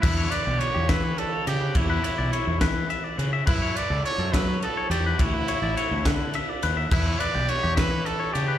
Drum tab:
CC |x-----|------|x-----|------|
RD |-xxxxx|xxxxxx|-xxxxx|xxxxxx|
SD |---o--|---o--|---o--|---o--|
BD |o--o--|o--o--|o--o--|o--o--|

CC |x-----|
RD |-xxxxx|
SD |---o--|
BD |o--o--|